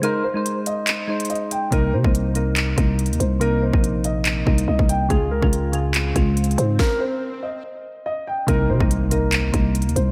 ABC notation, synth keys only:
X:1
M:4/4
L:1/16
Q:1/4=142
K:Cphr
V:1 name="Synth keys"
[A,Ec]2 z [A,Ec]4 z3 [A,Ec]4 z2 | [C,B,E]2 z [C,B,E]2 z [C,B,E]2 z2 [C,B,E]4 z2 | [C,B,E]2 z [C,B,E]4 z3 [C,B,E]4 z2 | [D,A,F]2 z [D,A,F]2 z [D,A,F]2 z2 [D,A,F]4 z2 |
z16 | [C,B,E]2 z [C,B,E]2 z [C,B,E]2 z2 [C,B,E]4 z2 |]